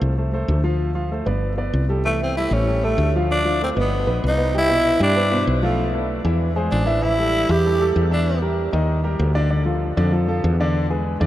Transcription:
Already playing: grand piano A3 A4 C5
0.01 fretless electric bass C2
0.17 grand piano A3 A4 C5
0.33 grand piano A3 A4 C5
0.48 fretless electric bass D2
0.64 grand piano F3 F4 F5
0.95 grand piano F3 F4 F5
1.11 grand piano A3 A4 C5
1.26 fretless electric bass G1, grand piano B3 B4 D5
1.58 grand piano B3 B4 D5
1.73 fretless electric bass C2
1.89 grand piano G3 G4 A4
2.05 grand piano E3 E4 E5, tenor saxophone A3
2.23 tenor saxophone C4
2.37 grand piano G3 G4 A4, tenor saxophone E4
2.51 fretless electric bass A1, tenor saxophone C#4
2.67 grand piano G3 G4 A4
2.83 grand piano G3 G4 A4, tenor saxophone A3
2.98 fretless electric bass D2
3.16 grand piano F3 F4 F5
3.31 tenor saxophone D4
3.45 grand piano F3 F4 F5
3.61 grand piano A3 A4 C5, tenor saxophone C4
3.76 fretless electric bass G1, grand piano B3 B4 D#5
3.80 tenor saxophone B3
4.07 fretless electric bass A#1, grand piano B3 B4 D#5
4.24 fretless electric bass C2, tenor saxophone D#4
4.38 grand piano B3 B4 C5
4.54 grand piano G3 G4 G5, tenor saxophone E4
4.69 grand piano B2 B4 C5
5.00 fretless electric bass G2, grand piano G3 G4 G5, tenor saxophone D4
5.16 grand piano B3 B4 C5
5.32 grand piano B2 B4 C5
5.47 fretless electric bass B1
5.62 grand piano F3 F4 F5, tenor saxophone A3
5.93 grand piano A3 A4 B4
6.25 fretless electric bass E2, grand piano E3 E4 E5
6.56 grand piano G#3 G#4 C5
6.71 fretless electric bass A1, tenor saxophone D4
6.86 grand piano E3 E4 E5
7.02 grand piano E3 E4 E5, tenor saxophone E4
7.18 grand piano G3 G4 A4
7.49 fretless electric bass E2, grand piano E3 E4 E5, tenor saxophone G4
7.65 grand piano G3 G4 A4
7.81 grand piano G3 G4 A4
7.96 fretless electric bass E2
8.11 grand piano E3 E4 E5, tenor saxophone D4
8.42 grand piano G3 G4 A#4
8.72 fretless electric bass D#2, grand piano D#3 D#4 D#5
9.04 grand piano G3 G4 A#4
9.19 fretless electric bass D2
9.35 grand piano D3 D4 D5
9.50 grand piano D3 D4 D5
9.66 grand piano F3 F4 A4
9.97 fretless electric bass F2, grand piano D3 D4 D5
10.12 grand piano F3 F4 A4
10.27 grand piano F3 F4 A4
10.44 fretless electric bass E2
10.60 grand piano D3 D4 D5
10.90 grand piano G#3 G#4 B4
11.20 fretless electric bass E2, grand piano D3 D4 D5

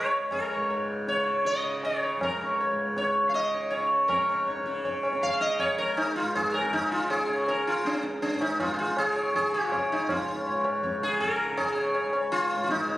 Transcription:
Already playing: tanpura G#2 C#3, sitar C#5
0.03 tanpura C#2
0.31 sitar A#4, tabla na, tabla ge
0.51 sitar C#5
0.56 tanpura G#2
0.70 sitar C#5
1.07 tanpura C#3, sitar C#5, tabla te
1.45 sitar D#5, tabla te
1.64 tanpura C#3
1.83 sitar C#5, tabla na
2.03 sitar C#5
2.17 tanpura C#2
2.21 sitar A#4, tabla na, tabla ge
2.41 sitar C#5
2.61 sitar C#5
2.71 tanpura G#2
2.97 sitar C#5, tabla te
3.24 tanpura C#3
3.29 sitar F5
3.34 sitar D#5, tabla te
3.54 sitar C#5
3.70 sitar C#5, tabla na
3.78 tanpura C#3
4.08 tanpura G#2, sitar A#4 C#5, tabla na, tabla ge
4.29 sitar C#5
4.47 sitar C#5, tabla te
4.57 tabla te
4.63 tanpura C#3, sitar C#5, tabla ke
4.75 tabla te
4.85 sitar C#5, tabla tin, tabla ge
5.03 sitar C#5, tabla na
5.13 tanpura C#3, tabla ke
5.22 sitar F5, tabla na, tabla ge
5.41 sitar D#5, tabla te
5.59 sitar C#5, tabla na, tabla ge
5.69 tanpura C#2
5.78 sitar A#4, tabla ge
5.97 sitar D#4, tabla na
6.16 sitar F4
6.22 tanpura G#2
6.35 sitar G#4, tabla tin, tabla ge
6.54 sitar A#4, tabla na
6.64 tabla ke
6.73 tanpura C#3, sitar D#4, tabla na, tabla ge
6.92 sitar F4
7.10 sitar G#4, tabla na
7.28 tanpura C#3, sitar C#5
7.48 sitar A#4, tabla tin
7.67 sitar F4
7.82 tanpura C#2, sitar C#4, tabla te
7.95 tabla te
8.04 tabla ke
8.13 tabla te
8.22 sitar C#4, tabla tin
8.35 tanpura G#2
8.41 sitar D#4, tabla na
8.60 sitar F4, tabla na, tabla ge
8.74 sitar G#4
8.79 sitar F4
8.89 tanpura C#3
8.97 sitar G#4, tabla na
9.16 sitar C#5
9.34 sitar G#4, tabla na, tabla ge
9.41 tanpura C#3
9.53 sitar F4, tabla te
9.72 sitar C#5, tabla na, tabla ge
9.92 tanpura C#2, sitar D#4
10.09 sitar F4, tabla na, tabla ge
10.28 sitar C#5
10.46 tanpura G#2, sitar C#5, tabla na
10.64 sitar C#5, tabla na
10.83 sitar C#5, tabla tin, tabla ge
10.99 tanpura C#3, sitar G#4
11.20 sitar A#4, tabla na, tabla ge
11.52 tanpura C#3
11.57 sitar G#4, tabla na, tabla ge
11.75 sitar C#5
11.94 sitar C#5, tabla na
12.04 tanpura C#2
12.13 sitar C#5, tabla na
12.32 sitar F4, tabla te
12.50 sitar C#5
12.56 tanpura G#2
12.63 sitar F4
12.69 sitar D#4, tabla ke
12.88 sitar C#5

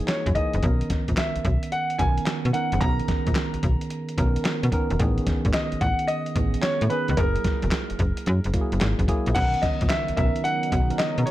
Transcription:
Already playing: tine electric piano E3 A#3 D#4 G#4
0.08 grand piano C#5, snare, clap, closed hi-hat
0.26 fm bass F#2, kick, closed hi-hat
0.35 tine electric piano E3 A#3 D#4 G#4, grand piano D#5, kick, closed hi-hat
0.53 fm bass F#1, closed hi-hat
0.63 fm bass B1, tine electric piano D#3 B3 C#4 A#4, kick, closed hi-hat
0.81 closed hi-hat
0.90 kick, snare, closed hi-hat
1.08 fm bass A#1, kick, closed hi-hat
1.17 grand piano E5, snare, clap, closed hi-hat
1.36 fm bass B1, closed hi-hat
1.45 fm bass B1, kick, closed hi-hat
1.63 closed hi-hat
1.72 grand piano F#5, closed hi-hat
1.90 closed hi-hat
1.98 fm bass B1, tine electric piano D#3 B3 C#4 A#4, grand piano G#5, kick, closed hi-hat
2.18 closed hi-hat
2.26 snare, clap, closed hi-hat
2.45 fm bass B2, closed hi-hat
2.53 tine electric piano D#3 B3 C#4 A#4, grand piano F#5, closed hi-hat
2.72 fm bass F#1, closed hi-hat
2.81 fm bass B1, tine electric piano D#3 B3 C#4 G#4, grand piano A#5, kick, closed hi-hat
2.89 tine electric piano A#4
2.99 closed hi-hat
3.08 kick, snare, closed hi-hat
3.27 fm bass A#1, kick, closed hi-hat
3.35 snare, clap, closed hi-hat
3.54 fm bass B1, closed hi-hat
3.63 fm bass B1, kick, closed hi-hat
3.81 closed hi-hat
3.90 closed hi-hat
4.09 closed hi-hat
4.18 fm bass B1, tine electric piano D#3 B3 C#4 A#4, kick, closed hi-hat
4.36 closed hi-hat
4.45 snare, clap, closed hi-hat
4.63 fm bass B2, closed hi-hat
4.72 tine electric piano D#3 B3 C#4 A#4, kick, closed hi-hat
4.90 fm bass E1, closed hi-hat
4.99 fm bass A1, tine electric piano D#3 B3 C#4 G#4, kick, closed hi-hat
5.18 closed hi-hat
5.27 kick, snare, closed hi-hat
5.45 fm bass G#1, kick, closed hi-hat
5.53 grand piano D#5, snare, clap, closed hi-hat
5.72 fm bass A1, closed hi-hat
5.81 fm bass A1, grand piano F#5, kick, closed hi-hat
5.99 closed hi-hat
6.08 grand piano D#5, closed hi-hat
6.26 closed hi-hat
6.36 fm bass A1, tine electric piano D#3 B3 C#4 G#4, kick, closed hi-hat
6.54 closed hi-hat
6.62 grand piano C#5, snare, clap, closed hi-hat
6.81 fm bass A2, closed hi-hat
6.90 tine electric piano D#3 B3 C#4 G#4, grand piano B4, closed hi-hat
7.08 fm bass C#2, closed hi-hat
7.17 fm bass F#1, tine electric piano F#3 A#3 E4 G#4, grand piano A#4, kick, closed hi-hat
7.36 closed hi-hat
7.44 kick, snare, closed hi-hat
7.62 fm bass E1, kick, closed hi-hat
7.71 snare, clap, closed hi-hat
7.90 fm bass F#1, closed hi-hat
7.99 fm bass F#1, kick, closed hi-hat
8.17 closed hi-hat
8.26 fm bass F#2, closed hi-hat
8.44 fm bass F#1, closed hi-hat
8.53 tine electric piano F#3 A#3 E4 F#4, kick, closed hi-hat
8.61 tine electric piano G#4
8.72 fm bass F#1, closed hi-hat
8.81 fm bass G#1, snare, clap, closed hi-hat
8.99 fm bass F#1, kick, closed hi-hat
9.08 tine electric piano F#3 A#3 E4 G#4, kick, closed hi-hat
9.26 fm bass A#1, closed hi-hat
9.35 fm bass B1, analog synth pad C#3 F#3 B3 D#4 A#4, tine electric piano D#3 B3 C#4 A#4, grand piano F#5, kick, closed hi-hat, crash
9.54 closed hi-hat
9.62 grand piano D#5, kick, snare, closed hi-hat
9.81 fm bass A#1, kick, closed hi-hat
9.89 grand piano E5, snare, clap, closed hi-hat
10.08 fm bass B1, closed hi-hat
10.17 fm bass B1, tine electric piano D#3 B3 C#4 A#4, grand piano E5, kick, closed hi-hat
10.36 closed hi-hat
10.44 grand piano F#5, closed hi-hat
10.63 closed hi-hat
10.72 fm bass B1, kick, closed hi-hat
10.90 tine electric piano D#3 B3 C#4 A#4, closed hi-hat
10.98 grand piano D#5, snare, clap, closed hi-hat
11.18 fm bass B2, closed hi-hat
11.26 grand piano C#5, closed hi-hat

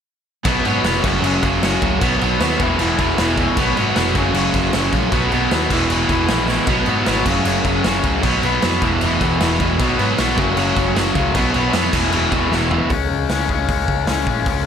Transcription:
0.45 picked electric bass B1, overdriven electric guitar B2 F#3 B3, kick, crash
0.64 picked electric bass G#2, overdriven electric guitar B2 F#3 B3, crash
0.84 picked electric bass F1, overdriven electric guitar B2 F#3 B3, snare, crash
1.04 picked electric bass F#1, overdriven electric guitar F#2 C#3 F#3, kick, crash
1.22 picked electric bass F#1, overdriven electric guitar F#2 C#3 F#3, crash
1.43 picked electric bass F#1, overdriven electric guitar F#2 C#3 F#3, kick, crash
1.62 picked electric bass F#1, overdriven electric guitar F#2 C#3 F#3, snare, crash
1.82 picked electric bass C#2, overdriven electric guitar F#2 C#3 F#3, kick, crash
2.01 picked electric bass B1, overdriven electric guitar B2 F#3 B3, kick, crash
2.21 picked electric bass B1, overdriven electric guitar B2 F#3 B3, crash
2.40 picked electric bass D#2, overdriven electric guitar B2 F#3 B3, snare, crash
2.60 picked electric bass E1, overdriven electric guitar E2 B2 E3, kick, crash
2.79 picked electric bass E1, overdriven electric guitar E2 B2 E3, crash
2.98 picked electric bass E1, overdriven electric guitar E2 B2 E3, kick, crash
3.18 picked electric bass E1, overdriven electric guitar E2 B2 E3, snare, crash
3.37 overdriven electric guitar E2 B2 E3, kick, crash
3.57 picked electric bass B1, overdriven electric guitar B2 F#3 B3, kick, crash
3.77 picked electric bass G#2, overdriven electric guitar B2 F#3 B3, crash
3.96 picked electric bass F1, overdriven electric guitar B2 F#3 B3, snare, crash
4.15 picked electric bass F#1, overdriven electric guitar F#2 C#3 F#3, kick, crash
4.34 picked electric bass F#1, overdriven electric guitar F#2 C#3 F#3, crash
4.54 picked electric bass F#1, overdriven electric guitar F#2 C#3 F#3, kick, crash
4.73 picked electric bass F#1, overdriven electric guitar F#2 C#3 F#3, snare, crash
4.93 picked electric bass A#1, overdriven electric guitar F#2 C#3 F#3, kick, crash
5.12 picked electric bass B1, overdriven electric guitar B2 F#3 B3, kick, crash
5.31 picked electric bass B1, overdriven electric guitar B2 F#3 B3, crash
5.51 picked electric bass D#2, overdriven electric guitar B2 F#3 B3, snare, crash
5.70 picked electric bass E1, overdriven electric guitar E2 B2 E3, kick, crash
5.90 picked electric bass E1, overdriven electric guitar E2 B2 E3, crash
6.09 picked electric bass E1, overdriven electric guitar E2 B2 E3, kick, crash
6.28 picked electric bass A#1, overdriven electric guitar E2 B2 E3, snare, crash
6.48 overdriven electric guitar E2 B2 E3, snare
6.67 picked electric bass B1, overdriven electric guitar B2 F#3 B3, kick, crash
6.86 picked electric bass G#2, overdriven electric guitar B2 F#3 B3, crash
7.06 picked electric bass G#1, overdriven electric guitar B2 F#3 B3, snare, crash
7.26 picked electric bass F#1, overdriven electric guitar F#2 C#3 F#3, kick, crash
7.45 picked electric bass F#1, overdriven electric guitar F#2 C#3 F#3, crash
7.64 picked electric bass F#1, overdriven electric guitar F#2 C#3 F#3, kick, crash
7.84 picked electric bass F#1, overdriven electric guitar F#2 C#3 F#3, snare, crash
8.03 picked electric bass C#2, overdriven electric guitar F#2 C#3 F#3, kick, crash
8.23 picked electric bass B1, overdriven electric guitar B2 F#3 B3, kick, crash
8.42 picked electric bass B1, overdriven electric guitar B2 F#3 B3, crash
8.62 picked electric bass F2, overdriven electric guitar B2 F#3 B3, snare, crash
8.81 picked electric bass E1, overdriven electric guitar E2 B2 E3, kick, crash
9.01 picked electric bass E1, overdriven electric guitar E2 B2 E3, crash
9.20 picked electric bass E1, overdriven electric guitar E2 B2 E3, kick, crash
9.39 picked electric bass E1, overdriven electric guitar E2 B2 E3, snare, crash
9.59 overdriven electric guitar E2 B2 E3, kick, crash
9.78 picked electric bass B1, overdriven electric guitar B2 F#3 B3, kick, crash
9.99 picked electric bass G#2, overdriven electric guitar B2 F#3 B3, crash
10.18 picked electric bass B1, overdriven electric guitar B2 F#3 B3, snare, crash
10.37 picked electric bass F#1, overdriven electric guitar F#2 C#3 F#3, kick, crash
10.56 picked electric bass F#1, overdriven electric guitar F#2 C#3 F#3, crash
10.76 picked electric bass F#1, overdriven electric guitar F#2 C#3 F#3, kick, crash
10.96 picked electric bass F#1, overdriven electric guitar F#2 C#3 F#3, snare, crash
11.15 picked electric bass C#2, overdriven electric guitar F#2 C#3 F#3, kick, crash
11.35 picked electric bass B1, overdriven electric guitar B2 F#3 B3, kick, crash
11.54 picked electric bass B1, overdriven electric guitar B2 F#3 B3, crash
11.73 picked electric bass F2, overdriven electric guitar B2 F#3 B3, snare, crash
11.93 picked electric bass E1, overdriven electric guitar E2 B2 E3, kick, crash
12.12 picked electric bass E1, overdriven electric guitar E2 B2 E3, crash
12.32 picked electric bass E1, overdriven electric guitar E2 B2 E3, kick, crash
12.52 picked electric bass E1, overdriven electric guitar E2 B2 E3, snare
12.71 overdriven electric guitar E2 B2 E3, floor tom
12.90 picked electric bass C#2, overdriven electric guitar C#3 G#3 C#4, kick, open hi-hat
13.10 picked electric bass C#2
13.29 picked electric bass C#2, overdriven electric guitar C#3 G#3 C#4, snare, open hi-hat
13.49 picked electric bass C#2, overdriven electric guitar C#3 G#3 C#4, kick
13.68 picked electric bass C#2, overdriven electric guitar C#3 G#3 C#4, kick, open hi-hat
13.88 picked electric bass C#2, kick
14.07 picked electric bass C#2, overdriven electric guitar C#3 G#3 C#4, snare, open hi-hat
14.27 picked electric bass A#1, overdriven electric guitar C#3 G#3 C#4, kick
14.46 picked electric bass C#2, overdriven electric guitar C#3 G#3 C#4, kick, open hi-hat

